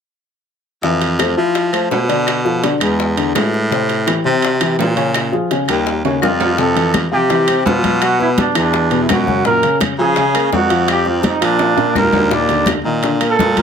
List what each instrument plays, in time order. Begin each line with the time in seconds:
0.83 baritone saxophone F2, grand piano E3 E4 E5, high bongo
1.01 high bongo, high timbale
1.19 grand piano A3 A4 C5, high bongo, high timbale, low timbale, claves
1.37 baritone saxophone F3, grand piano F3 E4 E5
1.55 high bongo, high timbale
1.73 grand piano A3 A4 C5, high bongo, high timbale, claves
1.91 baritone saxophone B2, high bongo, low bongo, low timbale
2.08 grand piano D3 D4 D5, high bongo, high timbale
2.27 high bongo, high timbale, claves
2.44 grand piano F3 F4 A4, high bongo
2.63 grand piano D3 D4 D5, high bongo, high timbale, low timbale
2.80 baritone saxophone E2, grand piano G#3 G#4 B4, high timbale, claves
3.00 high bongo
3.17 grand piano D3 D4 D5, high bongo, high timbale
3.34 baritone saxophone A2, grand piano G#3 G#4 B4, high bongo, low bongo, high timbale, low timbale, claves
3.54 high bongo
3.71 grand piano C3 C4 C5, high bongo
3.89 high bongo, high timbale
4.07 grand piano E3 E4 G4, high bongo, high timbale, low timbale, claves
4.25 grand piano C3 C4 C5, baritone saxophone C3
4.42 high bongo, high timbale
4.61 grand piano E3 E4 G4, high bongo, high timbale, claves
4.79 baritone saxophone A#2, high bongo, low bongo, low timbale
4.96 grand piano C#3 C#4 C#5, high bongo, high timbale
5.14 high bongo, high timbale, claves
5.32 grand piano F3 F4 G#4, high bongo
5.50 grand piano C#3 C#4 C#5, high bongo, high timbale, low timbale
5.68 baritone saxophone D#2, grand piano G3 G4 A#4, high timbale, claves
5.87 high bongo
6.04 baritone saxophone D#2, grand piano C#3 C#4 C#5, high bongo, high timbale
6.22 baritone saxophone F2, grand piano G3 G4 A#4, trumpet F4, high bongo, low bongo, high timbale, claves
6.40 high bongo, low timbale
6.58 grand piano C3 C4, trumpet A4, high bongo, high conga
6.75 grand piano E3 E4, high bongo, high conga, high timbale
6.94 high bongo, high conga, high timbale, low timbale, claves
7.11 baritone saxophone C3, grand piano F3 F4, trumpet G4, high conga
7.29 grand piano E3 E4, high bongo, high conga, high timbale
7.48 grand piano C4 C5, high bongo, high conga, high timbale, claves
7.66 baritone saxophone B2, trumpet F4, high bongo, low bongo, high conga, low timbale
7.83 grand piano F#3 F#4, high bongo, high conga, high timbale
8.02 trumpet F#4, high bongo, high conga, high timbale, claves
8.19 grand piano B3 B4, trumpet E4, high bongo, high conga
8.38 trumpet D4, high bongo, high conga, high timbale, low timbale
8.55 baritone saxophone E2, grand piano E3 E4, trumpet D4, high conga, high timbale, claves
8.74 high bongo, high conga
8.91 grand piano B2 B3, high bongo, high conga, high timbale
9.03 trumpet E4
9.09 baritone saxophone F#2, trumpet F#4, high bongo, low bongo, high conga, high timbale, low timbale, claves
9.26 grand piano C#3 C#4, high bongo, high conga
9.45 grand piano A#2 A#3, trumpet A#4, high bongo, high conga
9.63 grand piano C#3 C#4, high bongo, high conga, high timbale
9.81 high bongo, high conga, high timbale, low timbale, claves
9.98 baritone saxophone C#3, grand piano F3 F4, trumpet G#4, high conga
10.16 grand piano C#3 C#4, high bongo, high conga, high timbale
10.34 grand piano A#3 A#4, high bongo, high conga, high timbale, claves
10.52 baritone saxophone F2, trumpet F#4, high bongo, low bongo, high conga, low timbale
10.70 grand piano F3 F4, high bongo, high timbale
10.88 trumpet G4, high bongo, high conga, high timbale, claves
11.05 grand piano C4 C5, trumpet F4, high bongo, high conga
11.21 trumpet D4, high bongo, high conga, high timbale, low timbale
11.26 trumpet D#4
11.41 baritone saxophone A#2, grand piano F3 F4, trumpet D4, high conga, high timbale, claves
11.59 high bongo, high conga, high timbale
11.76 grand piano A#2 A#3, high bongo, high conga, high timbale
11.95 baritone saxophone D#2, trumpet A#4, high bongo, low bongo, high conga, low timbale, claves
12.13 grand piano D3 D4, high bongo, high conga, low timbale
12.30 grand piano A#2 A#3, trumpet D5, high bongo, high conga
12.48 grand piano D3 D4, high bongo, high conga, high timbale
12.66 high bongo, high conga, high timbale, low timbale, claves
12.84 baritone saxophone A#2, grand piano D#3 D#4, high conga
13.03 grand piano D3 D4, high bongo, high conga, high timbale
13.21 grand piano A#3 A#4, high bongo, high conga, high timbale, claves
13.30 trumpet A4
13.38 baritone saxophone A#2, high bongo, low bongo, high conga, low timbale
13.57 grand piano F3 F4, high bongo, high conga, high timbale